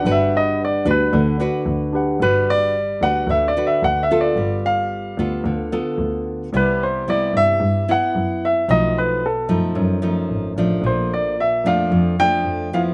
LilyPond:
<<
  \new Staff \with { instrumentName = "Grand piano" } { \time 4/4 \key g \major \tempo 4 = 111 e''8 ees''8 d''8 b'4 r4. | b'8 d''4 fis''8 \tuplet 3/2 { e''8 d''8 e''8 fis''8 e''8 d''8~ } | d''8 f''2 r4. | b'8 c''8 d''8 e''4 fis''4 e''8 |
dis''8 b'8 a'4 r2 | c''8 d''8 e''8 f''4 g''4 f''8 | }
  \new Staff \with { instrumentName = "Tine electric piano" } { \time 4/4 \key g \major <d' b' fis''>2.~ <d' b' fis''>8 <d' g' b' fis''>8 | r1 | r1 | r1 |
r1 | r1 | }
  \new Staff \with { instrumentName = "Nylon-string guitar" } { \time 4/4 \key g \major << { <d' fis' b'>4 r8 <d' fis' b'>4 <d' fis' b'>4. | <d' fis' b'>4 r8 <d' fis' b'>4 <d' fis' b'>4 <b f' a'>8~ | <b f' a'>4. <b f' a'>4 <b f' a'>4. | <g b e'>4 <g b e'>4. <b e'>4. |
<eis a dis'>4 r8 <eis a dis'>4 <eis a dis'>4 <eis a d'>8~ | <eis a d'>4 r8 <f a d'>4 <f a d'>4 <f b e'>8 | } \\ { g2 d2 | g2 d2 | g2 d2 | c2 r2 |
b,2 fis,2 | bes,2 f,2 | } >> }
  \new Staff \with { instrumentName = "Double bass" } { \clef bass \time 4/4 \key g \major g,,4. d,8 d,8 r8 d,4 | g,,4. d,8 d,8 r8 d,4 | g,,4. d,8 d,8 r8 d,4 | c,4. g,8 g,8 r8 fis,4 |
b,,4. fis,8 fis,8 r8 aes,,8 a,,8 | bes,,4. f,8 f,8 r8 f,4 | }
>>